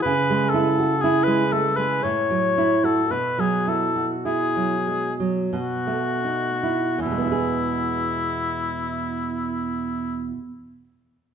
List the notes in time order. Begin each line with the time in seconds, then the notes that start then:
0.02 C#3 B4
0.30 G#3
0.50 A4
0.54 E4
0.79 F#4
1.01 E4 G#4
1.24 G#3 B4
1.52 A3 A4
1.77 G#3 B4
2.03 A2 C#5
2.30 F#3
2.58 E4
2.84 F#4 A4
3.11 B2 B4
3.38 F#3 G#4
3.68 E4 A4
3.96 F#4
4.25 E4 G#4
4.56 F#3
4.87 G#3
5.20 F#3
5.53 B2 F#4
5.87 A3
6.25 D#4
6.63 E4
6.99 E2 E4
7.06 B2
7.11 G#3
7.18 B3
7.25 E4
7.32 G#4